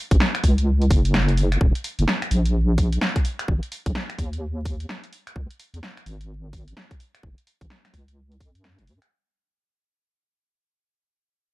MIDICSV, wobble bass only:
0, 0, Header, 1, 2, 480
1, 0, Start_track
1, 0, Tempo, 468750
1, 1646, Time_signature, 4, 2, 24, 8
1, 11813, End_track
2, 0, Start_track
2, 0, Title_t, "Wobble bass"
2, 0, Program_c, 0, 39
2, 115, Note_on_c, 0, 33, 86
2, 187, Note_off_c, 0, 33, 0
2, 447, Note_on_c, 0, 37, 84
2, 921, Note_off_c, 0, 37, 0
2, 927, Note_on_c, 0, 30, 76
2, 1615, Note_off_c, 0, 30, 0
2, 1647, Note_on_c, 0, 27, 95
2, 1763, Note_off_c, 0, 27, 0
2, 2035, Note_on_c, 0, 30, 90
2, 2107, Note_off_c, 0, 30, 0
2, 2367, Note_on_c, 0, 34, 85
2, 3056, Note_off_c, 0, 34, 0
2, 3567, Note_on_c, 0, 32, 99
2, 3683, Note_off_c, 0, 32, 0
2, 3955, Note_on_c, 0, 35, 86
2, 4027, Note_off_c, 0, 35, 0
2, 4285, Note_on_c, 0, 39, 81
2, 4974, Note_off_c, 0, 39, 0
2, 5486, Note_on_c, 0, 37, 97
2, 5603, Note_off_c, 0, 37, 0
2, 5874, Note_on_c, 0, 40, 84
2, 5947, Note_off_c, 0, 40, 0
2, 6207, Note_on_c, 0, 32, 85
2, 6896, Note_off_c, 0, 32, 0
2, 7407, Note_on_c, 0, 30, 94
2, 7523, Note_off_c, 0, 30, 0
2, 7794, Note_on_c, 0, 33, 84
2, 7866, Note_off_c, 0, 33, 0
2, 8126, Note_on_c, 0, 37, 83
2, 8606, Note_on_c, 0, 42, 96
2, 8622, Note_off_c, 0, 37, 0
2, 8995, Note_on_c, 0, 28, 89
2, 9011, Note_off_c, 0, 42, 0
2, 9087, Note_on_c, 0, 42, 75
2, 9102, Note_off_c, 0, 28, 0
2, 9203, Note_off_c, 0, 42, 0
2, 11813, End_track
0, 0, End_of_file